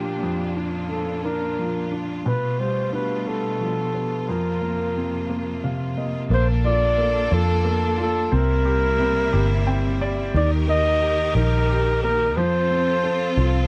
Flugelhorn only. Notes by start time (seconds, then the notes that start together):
Already playing: G4
0.90 A4
1.24 A#4
2.26 B4
2.60 C5
2.94 B4
3.28 A4
4.30 A#4
6.34 C5
6.66 D5
7.34 A4
8.01 A4
8.34 A#4
10.37 D5
10.70 D#5
11.36 A#4
12.03 A#4
12.37 C5